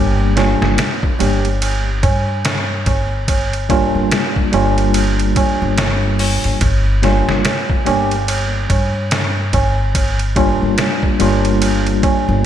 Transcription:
0.00 0.57 G1 medium
0.00 0.32 G3 medium
0.00 0.32 A#3 medium
0.00 0.32 D4 medium
0.00 0.33 G4 medium
0.19 tabla na soft
0.36 0.76 G3 medium
0.36 0.76 A#3 medium
0.36 0.76 D4 medium
0.36 0.77 F4 medium
0.36 snare soft
0.36 ride medium
0.36 tabla na medium
0.62 0.76 G1 medium
0.62 snare soft
0.62 tabla na soft
0.78 snare loud
0.78 ride medium
0.78 tabla na soft
1.03 kick medium
1.03 tabla na soft
1.19 2.00 G1 medium
1.19 1.47 G3 medium
1.19 1.48 A#3 medium
1.19 1.48 D4 medium
1.19 1.48 G4 medium
1.19 ride medium
1.19 tabla na medium
1.45 ride soft
1.45 tabla na soft
1.62 ride medium
1.62 tabla na soft
2.03 2.83 G2 medium
2.03 kick medium
2.03 ride medium
2.03 tabla na medium
2.28 tabla na soft
2.45 snare loud
2.45 ride medium
2.45 tabla na soft
2.70 tabla na soft
2.86 3.90 G1 medium
2.86 kick medium
2.86 ride medium
2.86 tabla na medium
3.12 tabla na soft
3.28 kick loud
3.28 ride medium
3.28 tabla na medium
3.53 ride soft
3.69 4.49 G3 medium
3.69 4.49 A#3 medium
3.69 4.49 D4 medium
3.69 4.50 F4 medium
3.69 kick medium
3.69 ride medium
3.69 tabla na medium
3.95 4.10 G1 medium
3.95 tabla na soft
4.11 snare loud
4.11 ride medium
4.11 tabla na medium
4.36 kick medium
4.36 tabla na soft
4.52 5.34 G1 medium
4.52 6.59 G3 medium
4.52 6.60 A#3 medium
4.52 6.60 D4 medium
4.52 6.61 F4 medium
4.52 ride medium
4.52 tabla na loud
4.78 ride soft
4.78 tabla na soft
4.94 ride medium
4.94 tabla na soft
5.20 ride soft
5.20 tabla na soft
5.36 kick medium
5.36 ride medium
5.36 tabla na medium
5.62 6.40 G1 medium
5.62 tabla na soft
5.78 snare loud
5.78 ride medium
5.78 tabla na medium
6.04 tabla na soft
6.19 open hi-hat medium
6.19 tabla na medium
6.44 6.60 G1 medium
6.44 ride soft
6.44 tabla na soft
6.61 7.23 G1 medium
6.61 kick loud
6.61 ride medium
6.61 tabla na medium
6.87 tabla na soft
7.02 7.42 G3 medium
7.02 7.43 A#3 medium
7.02 7.43 D4 medium
7.02 7.43 F4 medium
7.02 snare soft
7.02 ride medium
7.02 tabla na medium
7.29 7.43 G1 medium
7.29 snare soft
7.29 tabla na soft
7.45 snare loud
7.45 ride medium
7.45 tabla na medium
7.70 kick medium
7.70 tabla na soft
7.86 8.67 G1 medium
7.86 8.14 G3 medium
7.86 8.14 A#3 medium
7.86 8.14 D4 medium
7.86 8.15 G4 medium
7.86 ride medium
7.86 tabla na medium
8.11 ride soft
8.11 tabla na soft
8.28 ride medium
8.28 tabla na medium
8.54 tabla na soft
8.70 9.50 G2 medium
8.70 kick medium
8.70 ride medium
8.70 tabla na medium
8.95 tabla na soft
9.11 snare loud
9.11 ride medium
9.11 tabla na medium
9.38 tabla na soft
9.53 10.57 G1 medium
9.53 kick medium
9.53 ride medium
9.53 tabla na medium
9.79 tabla na soft
9.95 kick loud
9.95 ride medium
9.95 tabla na soft
10.19 ride soft
10.36 11.16 G3 medium
10.36 11.16 A#3 medium
10.36 11.16 D4 medium
10.36 11.16 F4 medium
10.36 kick medium
10.36 ride medium
10.36 tabla na medium
10.62 10.77 G1 medium
10.62 tabla na soft
10.78 snare loud
10.78 ride medium
10.78 tabla na medium
11.03 kick medium
11.03 tabla na soft
11.19 12.00 G1 medium
11.19 12.46 G3 medium
11.19 12.46 A#3 medium
11.19 12.46 D4 medium
11.19 12.46 F4 medium
11.19 ride medium
11.19 tabla na medium
11.45 ride soft
11.45 tabla na soft
11.62 ride medium
11.62 tabla na soft
11.87 ride soft
11.87 tabla na soft
12.03 kick medium
12.03 ride medium
12.03 tabla na medium
12.29 12.46 G1 medium
12.29 tabla na soft

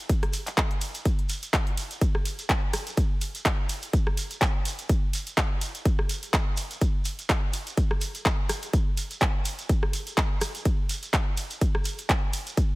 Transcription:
0.09 kick loud
0.09 closed hi-hat medium
0.09 shekere soft
0.23 cross-stick medium
0.23 closed hi-hat soft
0.33 open hi-hat loud
0.33 ride medium
0.33 shekere medium
0.46 clap soft
0.46 closed hi-hat medium
0.46 shekere soft
0.57 kick loud
0.57 clap loud
0.57 closed hi-hat medium
0.57 shekere soft
0.71 closed hi-hat soft
0.81 open hi-hat loud
0.81 ride medium
0.81 shekere medium
0.94 closed hi-hat medium
0.94 shekere medium
1.05 kick loud
1.05 closed hi-hat medium
1.05 shekere soft
1.19 closed hi-hat soft
1.29 open hi-hat loud
1.29 ride medium
1.29 shekere loud
1.42 closed hi-hat medium
1.42 shekere medium
1.53 kick loud
1.53 clap loud
1.53 closed hi-hat medium
1.53 shekere soft
1.67 closed hi-hat soft
1.77 open hi-hat loud
1.77 ride medium
1.77 shekere medium
1.91 closed hi-hat medium
1.91 shekere soft
2.01 kick loud
2.01 closed hi-hat medium
2.01 shekere soft
2.15 cross-stick medium
2.25 open hi-hat loud
2.25 ride medium
2.25 shekere medium
2.39 closed hi-hat medium
2.39 shekere medium
2.49 kick loud
2.49 clap loud
2.49 closed hi-hat medium
2.49 shekere soft
2.73 cross-stick medium
2.73 open hi-hat loud
2.73 ride medium
2.73 shekere medium
2.87 closed hi-hat medium
2.87 shekere medium
2.97 kick loud
2.97 closed hi-hat medium
2.97 shekere soft
3.21 open hi-hat loud
3.21 ride medium
3.21 shekere medium
3.35 closed hi-hat medium
3.35 shekere medium
3.45 kick loud
3.45 clap loud
3.45 closed hi-hat medium
3.69 open hi-hat loud
3.69 ride medium
3.69 shekere medium
3.82 closed hi-hat medium
3.82 shekere medium
3.93 kick loud
3.93 closed hi-hat medium
3.93 shekere soft
4.07 cross-stick medium
4.17 open hi-hat loud
4.17 ride medium
4.17 shekere medium
4.30 closed hi-hat medium
4.30 shekere medium
4.41 kick loud
4.41 clap loud
4.41 closed hi-hat medium
4.41 shekere soft
4.65 open hi-hat loud
4.65 ride medium
4.65 shekere medium
4.79 closed hi-hat medium
4.79 shekere medium
4.89 kick loud
4.89 closed hi-hat medium
4.89 shekere soft
5.13 open hi-hat loud
5.13 ride medium
5.13 shekere loud
5.27 closed hi-hat medium
5.27 shekere medium
5.37 kick loud
5.37 clap loud
5.37 closed hi-hat medium
5.37 shekere soft
5.61 open hi-hat loud
5.61 ride medium
5.61 shekere medium
5.75 closed hi-hat medium
5.75 shekere soft
5.85 kick loud
5.85 closed hi-hat medium
5.85 shekere soft
5.99 cross-stick medium
6.09 open hi-hat loud
6.09 ride medium
6.09 shekere medium
6.23 closed hi-hat medium
6.23 shekere medium
6.33 kick loud
6.33 clap loud
6.33 closed hi-hat medium
6.33 shekere soft
6.57 open hi-hat loud
6.57 ride medium
6.57 shekere medium
6.71 closed hi-hat medium
6.71 shekere medium
6.81 kick loud
6.81 closed hi-hat medium
6.81 shekere soft
7.05 open hi-hat loud
7.05 ride medium
7.05 shekere loud
7.19 closed hi-hat medium
7.19 shekere medium
7.29 kick loud
7.29 clap loud
7.29 closed hi-hat medium
7.29 shekere soft
7.53 open hi-hat loud
7.53 ride medium
7.53 shekere loud
7.67 closed hi-hat medium
7.67 shekere medium
7.77 kick loud
7.77 closed hi-hat medium
7.77 shekere soft
7.91 cross-stick medium
8.01 open hi-hat loud
8.01 ride medium
8.01 shekere medium
8.15 closed hi-hat medium
8.15 shekere medium
8.25 kick loud
8.25 clap loud
8.25 closed hi-hat medium
8.25 shekere soft
8.49 cross-stick medium
8.49 open hi-hat loud
8.49 ride medium
8.49 shekere medium
8.62 closed hi-hat medium
8.62 shekere medium
8.73 kick loud
8.73 closed hi-hat medium
8.73 shekere soft
8.97 open hi-hat loud
8.97 ride medium
8.97 shekere loud
9.11 closed hi-hat medium
9.11 shekere medium
9.20 kick loud
9.20 clap loud
9.20 closed hi-hat medium
9.20 shekere soft
9.45 open hi-hat loud
9.45 ride medium
9.45 shekere medium
9.59 closed hi-hat soft
9.59 shekere soft
9.69 kick loud
9.69 closed hi-hat medium
9.69 shekere soft
9.83 cross-stick medium
9.93 open hi-hat loud
9.93 ride medium
9.93 shekere medium
10.07 closed hi-hat medium
10.07 shekere soft
10.17 kick loud
10.17 clap loud
10.17 closed hi-hat medium
10.17 shekere soft
10.41 cross-stick medium
10.41 open hi-hat loud
10.41 ride medium
10.41 shekere medium
10.55 closed hi-hat medium
10.55 shekere medium
10.65 kick loud
10.65 closed hi-hat medium
10.65 shekere soft
10.89 open hi-hat loud
10.89 ride medium
10.89 shekere loud
11.03 closed hi-hat medium
11.03 shekere medium
11.13 kick loud
11.13 clap loud
11.13 closed hi-hat medium
11.13 shekere soft
11.37 open hi-hat loud
11.37 ride medium
11.37 shekere medium
11.50 closed hi-hat medium
11.50 shekere medium
11.61 kick loud
11.61 closed hi-hat medium
11.61 shekere soft
11.75 cross-stick medium
11.85 open hi-hat loud
11.85 ride medium
11.85 shekere loud
11.98 closed hi-hat medium
11.98 shekere medium
12.09 kick loud
12.09 clap loud
12.09 closed hi-hat medium
12.09 shekere soft
12.33 open hi-hat loud
12.33 ride medium
12.33 shekere medium
12.47 closed hi-hat medium
12.47 shekere medium
12.57 kick loud
12.57 closed hi-hat medium
12.57 shekere soft

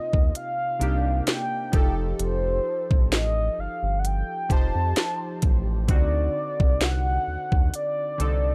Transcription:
0.00 0.79 C3 medium
0.00 0.80 A#3 medium
0.00 1.75 C4 medium
0.00 0.82 D#4 medium
0.00 1.75 F4 medium
0.00 0.35 D#5 loud
0.13 0.32 D#2 loud
0.13 kick medium
0.35 1.24 F5 loud
0.35 closed hi-hat medium
0.79 1.21 C2 loud
0.79 1.72 C3 medium
0.79 1.73 A#3 medium
0.79 1.73 D4 medium
0.79 1.72 D#4 medium
0.79 1.73 G4 medium
0.79 closed hi-hat medium
1.27 1.95 G5 loud
1.27 snare loud
1.27 closed hi-hat medium
1.72 2.14 F1 loud
1.72 3.21 F3 medium
1.72 3.21 D#4 medium
1.72 3.22 G4 medium
1.72 3.22 A4 medium
1.72 kick loud
1.72 closed hi-hat medium
2.19 2.60 F1 loud
2.19 3.09 C5 loud
2.19 closed hi-hat medium
2.91 3.49 A1 medium
2.91 kick medium
3.12 3.61 D#5 loud
3.12 snare loud
3.12 closed hi-hat medium
3.58 3.68 G1 medium
3.58 4.01 F5 loud
3.83 4.23 G1 loud
3.99 4.08 F#5 medium
4.05 4.54 G5 loud
4.05 closed hi-hat medium
4.49 4.72 F1 loud
4.49 5.44 F3 medium
4.49 5.45 D#4 medium
4.49 5.45 G4 medium
4.49 5.46 C5 medium
4.49 5.43 A5 loud
4.49 kick medium
4.49 closed hi-hat medium
4.75 4.94 F2 loud
4.96 snare loud
4.96 closed hi-hat medium
5.42 5.90 A1 loud
5.42 kick medium
5.42 closed hi-hat medium
5.88 6.29 D2 loud
5.88 7.15 D3 medium
5.88 7.16 C4 medium
5.88 7.16 D#4 medium
5.88 7.17 F#4 medium
5.88 6.85 D5 loud
5.88 kick loud
5.88 closed hi-hat medium
6.60 7.19 C2 medium
6.60 kick medium
6.81 7.74 F#5 loud
6.81 snare loud
6.81 closed hi-hat medium
7.28 7.37 D#2 soft
7.52 7.71 D#2 medium
7.52 kick medium
7.74 8.55 D5 loud
7.74 closed hi-hat medium
8.18 8.55 C2 medium
8.18 8.55 D3 medium
8.18 8.55 C4 medium
8.18 8.55 D#4 medium
8.18 8.55 A4 medium
8.18 closed hi-hat medium

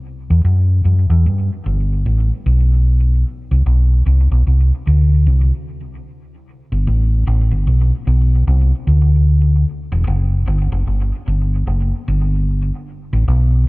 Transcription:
0.30 0.44 E2 medium
0.45 0.83 F#2 medium
0.85 1.09 F#2 medium
1.10 1.24 E2 medium
1.26 1.49 G2 medium
1.66 2.04 G1 medium
2.06 2.29 A1 medium
2.46 3.22 B1 loud
3.51 3.65 C2 medium
3.66 4.04 B1 medium
4.06 4.30 C2 medium
4.31 4.45 B1 medium
4.47 4.70 C2 medium
4.87 5.25 D2 medium
5.26 5.50 C2 medium
6.72 6.86 G1 medium
6.87 7.25 A1 loud
7.27 7.50 A1 loud
7.51 7.66 G1 medium
7.67 7.90 B1 medium
8.07 8.45 B1 loud
8.47 8.71 C2 medium
8.87 9.64 D2 loud
9.92 10.06 E1 loud
10.07 10.45 F#1 loud
10.47 10.71 G1 loud
10.72 10.86 F#1 medium
10.87 11.11 G1 medium
11.28 11.66 G1 loud
11.67 11.91 F#1 loud
12.08 12.70 G1 loud
13.13 13.27 A1 medium
13.28 13.66 B1 medium

